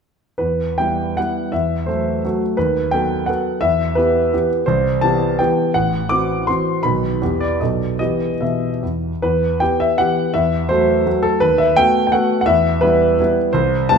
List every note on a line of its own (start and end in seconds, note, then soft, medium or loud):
0.38 0.77 E2 soft
0.38 0.78 B4 medium
0.78 1.14 G3 soft
0.78 1.14 B3 soft
0.78 1.14 E4 soft
0.78 1.17 G5 medium
1.17 1.50 G3 soft
1.17 1.50 B3 soft
1.17 1.50 E4 soft
1.17 1.53 F#5 medium
1.52 1.87 E2 soft
1.52 1.88 E5 medium
1.86 2.20 F#3 soft
1.86 2.20 A3 soft
1.86 2.21 F#4 soft
1.86 2.40 C5 medium
2.24 2.55 F#3 soft
2.24 2.55 A3 soft
2.24 2.55 F#4 soft
2.57 2.93 D#2 soft
2.57 2.93 B4 medium
2.91 3.25 F#3 soft
2.91 3.25 B3 soft
2.91 3.25 A4 soft
2.91 3.28 G5 medium
3.26 3.58 F#3 soft
3.26 3.58 B3 soft
3.26 3.59 A4 soft
3.26 3.61 F#5 medium
3.61 3.96 E2 soft
3.61 3.97 E5 medium
3.95 4.29 E3 soft
3.95 4.29 B3 soft
3.95 4.30 G4 soft
3.95 4.49 B4 medium
4.33 4.64 E3 soft
4.33 4.64 B3 soft
4.33 4.64 G4 soft
4.66 5.02 C2 medium
4.66 5.02 C5 medium
5.01 5.36 E3 soft
5.01 5.36 B3 soft
5.01 5.36 G4 soft
5.01 5.39 A5 medium
5.39 5.71 E3 soft
5.39 5.71 B3 soft
5.39 5.71 G4 soft
5.39 5.74 G5 medium
5.74 6.10 A1 soft
5.74 6.10 F#5 medium
6.09 6.44 E3 soft
6.09 6.44 C4 soft
6.09 6.44 F#4 soft
6.09 6.47 D6 medium
6.47 6.80 E3 soft
6.47 6.80 C4 soft
6.47 6.81 F#4 soft
6.47 6.83 C6 medium
6.83 7.20 B1 soft
6.83 7.18 D#3 soft
6.83 7.18 B3 soft
6.83 7.18 F#4 soft
6.83 7.41 B5 medium
7.22 7.60 E2 soft
7.22 7.57 E3 soft
7.22 7.57 B3 soft
7.22 7.58 G4 soft
7.41 7.60 D5 medium
7.60 7.99 B1 soft
7.60 7.96 F#3 soft
7.60 7.97 B3 soft
7.60 7.97 A4 soft
7.60 7.98 D#5 soft
7.99 8.29 E3 soft
7.99 8.33 B3 soft
7.99 8.33 G4 soft
7.99 8.41 D#5 medium
8.41 8.71 B2 soft
8.41 8.82 E5 soft
8.83 9.11 E2 soft
9.22 9.60 E2 soft
9.22 9.61 B4 medium
9.60 9.95 E3 soft
9.60 9.96 B3 soft
9.60 9.96 G4 soft
9.60 9.80 G5 medium
9.80 9.99 E5 medium
9.98 10.31 E3 soft
9.98 10.31 B3 soft
9.98 10.31 G4 soft
9.98 10.34 F#5 medium
10.34 10.69 E2 soft
10.34 10.70 E5 medium
10.69 11.03 F#3 soft
10.69 11.03 A3 soft
10.69 11.03 F#4 soft
10.69 11.24 C5 medium
11.06 11.38 F#3 soft
11.06 11.38 A3 soft
11.06 11.38 F#4 soft
11.23 11.41 A4 medium
11.40 11.76 D#2 soft
11.40 11.58 B4 medium
11.58 11.77 E5 medium
11.76 12.10 A3 soft
11.76 12.11 B3 soft
11.76 12.10 F#4 soft
11.76 12.05 G5 loud
12.07 12.14 G5 medium
12.12 12.44 A3 soft
12.12 12.44 B3 soft
12.12 12.45 F#4 soft
12.12 12.40 F#5 medium
12.41 12.47 F#5 medium
12.46 12.81 E2 medium
12.46 12.82 E5 medium
12.81 13.15 G3 soft
12.81 13.15 B3 soft
12.81 13.15 E4 soft
12.81 13.35 B4 medium
13.20 13.51 G3 soft
13.20 13.51 B3 soft
13.20 13.51 E4 soft
13.53 13.89 C2 medium
13.53 13.89 C5 medium
13.89 13.98 G3 soft
13.89 13.98 B3 soft
13.89 13.98 E4 soft
13.89 13.98 A5 loud